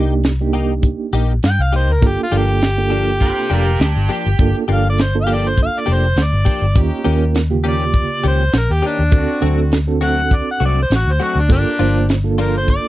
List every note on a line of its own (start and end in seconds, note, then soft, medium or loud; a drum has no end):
0.00 0.93 C2 medium
0.00 0.14 A#3 medium
0.00 0.30 A#3 medium
0.00 0.30 D4 medium
0.00 0.13 D#4 medium
0.00 0.30 D#4 medium
0.00 0.13 G4 medium
0.00 0.30 G4 medium
0.24 snare loud
0.24 closed hi-hat medium
0.41 1.34 A#3 medium
0.41 1.34 D4 medium
0.41 1.34 D#4 medium
0.41 1.34 G4 medium
0.53 0.73 A#3 medium
0.53 0.73 D#4 medium
0.53 0.72 G4 medium
0.53 closed hi-hat medium
0.83 kick medium
0.83 closed hi-hat medium
1.13 1.37 A#1 medium
1.13 1.33 A#3 medium
1.13 1.33 D#4 medium
1.13 1.32 G4 medium
1.13 closed hi-hat medium
1.43 1.57 G2 medium
1.43 1.64 G5 medium
1.43 snare loud
1.43 closed hi-hat medium
1.59 1.89 C2 loud
1.59 1.73 F5 medium
1.72 1.92 A#3 medium
1.72 1.92 D#4 medium
1.72 1.91 G4 medium
1.72 1.93 C5 medium
1.72 closed hi-hat medium
1.89 2.03 D2 medium
1.89 2.09 A#4 medium
2.01 2.16 G1 medium
2.01 2.25 A#3 medium
2.01 2.26 D4 medium
2.01 2.26 F4 medium
2.01 2.26 A4 medium
2.01 kick loud
2.01 closed hi-hat medium
2.07 2.20 G4 medium
2.23 2.39 F4 medium
2.31 3.30 G1 medium
2.31 2.51 F3 medium
2.31 2.67 A#3 medium
2.31 2.51 A#3 medium
2.31 2.67 D4 medium
2.31 2.51 D4 medium
2.31 2.67 F4 medium
2.31 2.50 G4 medium
2.31 2.67 A4 medium
2.31 closed hi-hat medium
2.37 4.08 G4 medium
2.62 snare loud
2.62 closed hi-hat medium
2.77 3.71 A#3 medium
2.77 3.71 D4 medium
2.77 3.71 F4 medium
2.77 3.71 A4 medium
2.90 3.10 F3 medium
2.90 3.10 A#3 medium
2.90 3.10 D4 medium
2.90 3.09 G4 medium
2.90 closed hi-hat medium
3.21 3.51 G4 medium
3.21 3.50 C5 loud
3.21 kick medium
3.21 closed hi-hat medium
3.50 3.75 F1 medium
3.50 3.69 F3 medium
3.50 3.69 A#3 medium
3.50 3.69 D4 medium
3.50 3.79 F4 medium
3.50 3.69 G4 medium
3.50 3.80 A#4 medium
3.50 closed hi-hat medium
3.80 3.93 D2 medium
3.80 4.09 D4 medium
3.80 4.10 G4 medium
3.80 snare loud
3.80 closed hi-hat medium
3.96 4.07 G1 loud
4.09 4.29 F3 medium
4.09 4.28 A#3 medium
4.09 4.28 D4 medium
4.09 4.28 G4 medium
4.09 4.55 G4 medium
4.09 closed hi-hat medium
4.26 4.37 G1 medium
4.39 4.52 G1 medium
4.39 4.63 A#3 medium
4.39 4.63 D4 medium
4.39 4.63 F4 medium
4.39 4.63 A4 medium
4.39 kick loud
4.39 closed hi-hat medium
4.68 5.67 G1 medium
4.68 4.88 F3 medium
4.68 4.88 A#3 medium
4.68 5.05 A#3 medium
4.68 4.87 D4 medium
4.68 5.05 D4 medium
4.68 5.05 F4 medium
4.68 4.87 G4 medium
4.68 5.05 A4 medium
4.68 closed hi-hat medium
4.74 4.86 F5 loud
4.89 5.03 D5 medium
4.98 5.15 C5 medium
4.98 snare loud
4.98 closed hi-hat medium
5.15 6.08 A#3 medium
5.15 6.08 D4 medium
5.15 6.08 F4 medium
5.15 6.08 A4 medium
5.21 5.35 F5 medium
5.27 5.47 F3 medium
5.27 5.47 A#3 medium
5.27 5.47 D4 medium
5.27 5.46 G4 medium
5.27 closed hi-hat medium
5.33 5.50 D5 medium
5.48 5.59 C5 medium
5.58 kick medium
5.58 closed hi-hat medium
5.62 5.81 F5 medium
5.80 5.94 D5 medium
5.86 6.12 F1 medium
5.86 6.06 F3 medium
5.86 6.06 A#3 medium
5.86 6.06 D4 medium
5.86 6.05 G4 medium
5.86 closed hi-hat medium
5.92 6.25 C5 medium
6.16 6.30 D2 medium
6.16 snare loud
6.16 closed hi-hat medium
6.23 6.78 D5 loud
6.33 6.44 G1 medium
6.45 6.65 F3 medium
6.45 6.65 A#3 medium
6.45 6.65 D4 medium
6.45 6.65 G4 medium
6.45 kick medium
6.45 closed hi-hat medium
6.62 6.77 G1 medium
6.75 6.89 D#2 medium
6.75 6.99 A#3 medium
6.75 7.34 C#4 medium
6.75 6.99 C#4 medium
6.75 7.35 D#4 medium
6.75 7.00 F4 medium
6.75 7.00 G4 medium
6.75 7.35 G4 medium
6.75 kick loud
6.75 closed hi-hat medium
7.04 8.04 D#2 medium
7.04 7.25 D#3 medium
7.04 7.40 A#3 medium
7.04 7.24 A#3 medium
7.04 7.41 C#4 medium
7.04 7.24 C#4 medium
7.04 7.41 F4 medium
7.04 7.24 G4 medium
7.04 7.41 A#4 medium
7.04 closed hi-hat medium
7.35 snare loud
7.35 closed hi-hat medium
7.50 8.44 C#3 medium
7.50 8.44 A#3 medium
7.50 8.44 F4 medium
7.50 8.44 G4 medium
7.64 7.84 D#3 medium
7.64 7.84 A#3 medium
7.64 7.83 C#4 medium
7.64 7.83 G4 medium
7.64 closed hi-hat medium
7.69 8.24 D5 medium
7.94 kick medium
7.94 closed hi-hat medium
8.23 8.49 C#2 medium
8.23 8.43 D#3 medium
8.23 8.43 A#3 medium
8.23 8.43 C#4 medium
8.23 8.43 G4 medium
8.23 closed hi-hat medium
8.27 8.54 C5 medium
8.52 8.67 A#1 medium
8.52 snare loud
8.52 closed hi-hat medium
8.58 8.74 A#4 medium
8.69 8.81 D#2 medium
8.69 8.88 G4 medium
8.82 9.02 D#3 medium
8.82 9.02 A#3 medium
8.82 9.02 C#4 medium
8.82 8.99 C#4 medium
8.82 9.00 D#4 medium
8.82 9.01 G4 medium
8.82 9.00 G4 medium
8.82 closed hi-hat medium
8.86 9.42 D4 medium
8.99 9.12 D#2 medium
9.11 9.26 D2 medium
9.11 9.36 C4 medium
9.11 9.72 C4 medium
9.11 9.36 D4 medium
9.11 9.73 D4 medium
9.11 9.36 F#4 medium
9.11 9.73 F#4 medium
9.11 9.36 A4 medium
9.11 kick loud
9.11 closed hi-hat medium
9.41 10.40 D2 medium
9.41 9.62 F#3 medium
9.41 9.61 A3 medium
9.41 9.77 C4 medium
9.41 9.61 C4 medium
9.41 9.77 D4 medium
9.41 9.78 F#4 medium
9.41 9.61 F#4 medium
9.41 9.78 A4 medium
9.41 closed hi-hat medium
9.72 snare loud
9.72 closed hi-hat medium
9.87 10.81 C4 medium
9.87 10.81 D4 medium
9.87 10.81 F#4 medium
9.87 10.81 A4 medium
10.01 10.21 F#3 medium
10.01 10.21 A3 medium
10.01 10.20 C4 medium
10.01 10.20 F#4 medium
10.01 10.36 F#5 medium
10.01 closed hi-hat medium
10.31 10.48 D5 medium
10.31 kick medium
10.31 closed hi-hat medium
10.51 10.62 F#5 medium
10.60 10.85 C2 medium
10.60 10.80 F#3 medium
10.60 10.80 A3 medium
10.60 10.79 C4 medium
10.60 10.79 F#4 medium
10.60 closed hi-hat medium
10.65 10.78 D5 medium
10.82 10.92 C5 medium
10.90 11.04 A1 medium
10.90 snare loud
10.90 closed hi-hat medium
10.95 11.13 F#4 medium
11.06 11.17 D2 loud
11.12 11.25 C5 medium
11.20 11.39 F#3 medium
11.20 11.39 A3 medium
11.20 11.39 C4 medium
11.20 11.36 C4 medium
11.20 11.36 D4 medium
11.20 11.39 F#4 medium
11.20 11.37 F#4 medium
11.20 closed hi-hat medium
11.24 11.41 F#4 medium
11.35 11.51 D2 medium
11.40 11.50 D4 medium
11.48 11.63 G1 medium
11.48 11.73 A#3 medium
11.48 12.08 A#3 medium
11.48 11.73 D4 medium
11.48 12.08 D4 medium
11.48 11.73 F4 medium
11.48 12.09 F4 medium
11.48 12.09 G4 medium
11.48 11.73 A4 medium
11.48 kick loud
11.48 closed hi-hat medium
11.79 12.77 G1 medium
11.79 11.99 F3 medium
11.79 12.15 A#3 medium
11.79 11.98 A#3 medium
11.79 12.15 D4 medium
11.79 11.98 D4 medium
11.79 11.98 F4 medium
11.79 12.15 F4 medium
11.79 12.15 C5 medium
11.79 closed hi-hat medium
12.09 snare loud
12.09 closed hi-hat medium
12.24 12.88 A#3 medium
12.24 12.88 D4 medium
12.24 12.88 F4 medium
12.24 12.88 A4 medium
12.38 12.58 F3 medium
12.38 12.57 A#3 medium
12.38 12.57 D4 medium
12.38 12.57 F4 medium
12.38 12.55 A#4 medium
12.38 closed hi-hat medium
12.57 12.68 C5 medium
12.68 12.88 D5 loud
12.68 kick medium
12.68 closed hi-hat medium